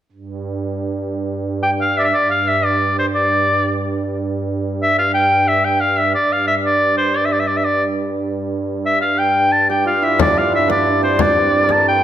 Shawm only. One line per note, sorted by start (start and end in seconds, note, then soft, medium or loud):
1.63 1.70 G5 medium
1.81 1.99 F5 medium
1.97 2.06 D5 medium
1.97 2.00 E5 medium
2.04 2.15 E5 medium
2.13 2.30 D5 medium
2.31 2.49 F5 medium
2.48 2.66 E5 medium
2.65 2.98 D5 medium
2.99 3.06 C5 medium
3.15 3.78 D5 medium
4.83 4.98 E5 medium
4.99 5.14 F5 medium
5.14 5.49 G5 medium
5.48 5.66 E5 medium
5.65 5.82 G5 medium
5.81 6.00 F5 medium
5.98 6.14 E5 medium
6.15 6.34 D5 medium
6.32 6.47 F5 medium
6.47 6.56 E5 medium
6.65 6.97 D5 medium
6.97 7.18 C5 medium
7.17 7.27 D5 medium
7.25 7.34 E5 medium
7.33 7.41 D5 medium
7.40 7.49 E5 medium
7.48 7.59 D5 medium
7.57 7.66 E5 medium
7.65 7.84 D5 medium
8.86 9.01 E5 medium
9.01 9.20 F5 medium
9.19 9.54 G5 medium
9.52 9.69 A5 medium
9.70 9.85 G5 medium
9.87 10.05 F5 medium
10.03 10.20 E5 medium
10.21 10.39 D5 medium
10.38 10.54 F5 medium
10.55 10.70 E5 medium
10.71 11.02 D5 medium
11.03 11.23 C5 medium
11.21 11.73 D5 medium
11.71 11.88 A5 medium
11.88 12.04 G5 medium